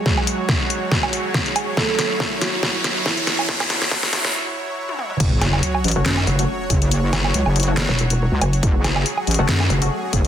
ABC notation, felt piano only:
X:1
M:4/4
L:1/8
Q:"Swing 16ths" 1/4=140
K:F#m
V:1 name="Felt piano"
[G,G]8 | [A,A]3 [F,F]3 [E,E]2- | [E,E]4 z4 | z8 |
z8 | z8 |]